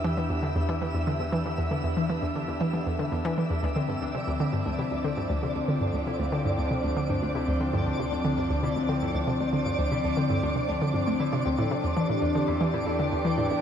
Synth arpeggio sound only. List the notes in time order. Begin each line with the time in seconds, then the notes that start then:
0.04 E3
0.17 E3
0.30 E2
0.43 D3
0.56 E2
0.69 E3
0.82 E3
0.94 E2
1.07 D3
1.20 E2
1.32 E3
1.45 E3
1.58 E2
1.71 D3
1.84 E2
1.97 E3
2.10 E3
2.22 E2
2.35 D3
2.48 E2
2.61 E3
2.74 E3
2.86 E2
2.99 D3
3.12 E2
3.25 E3
3.38 E3
3.50 E2
3.63 D2
3.76 D3
3.89 G2
4.01 D2
4.15 C3
4.27 D2
4.40 D3
4.53 G2
4.66 D2
4.79 C3
4.91 D2
5.04 D3
5.17 G2
5.30 D2
5.43 C3
5.55 D2
5.68 D3
5.81 G2
5.94 D2
6.07 C3
6.19 D2
6.32 D3
6.45 G2
6.58 D2
6.71 C3
6.84 D2
6.97 D3
7.10 G2
7.22 D2
7.35 C3
7.48 D2
7.61 D3
7.74 G2
7.86 D2
7.99 C3
8.12 D2
8.25 D3
8.37 G2
8.50 D2
8.63 C3
8.76 D2
8.89 D3
9.02 G2
9.14 D2
9.27 C3
9.40 D2
9.53 D3
9.66 G2
9.79 D2
9.92 C3
10.04 D2
10.17 D3
10.30 G2
10.43 D2
10.56 C3
10.68 D2
10.82 D3
10.94 G2
11.07 A3
11.20 D3
11.33 C3
11.46 D2
11.58 A2
11.71 C3
11.84 E2
11.97 E3
12.09 A2
12.22 E2
12.35 D3
12.48 E2
12.61 E3
12.74 A2
12.87 E2
12.99 D3
13.12 E2
13.25 E3
13.38 A2
13.51 E2